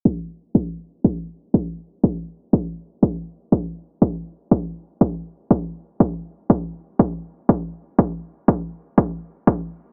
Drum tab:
BD |o-o-o-o-|o-o-o-o-|o-o-o-o-|o-o-o-o-|

BD |o-o-o-o-|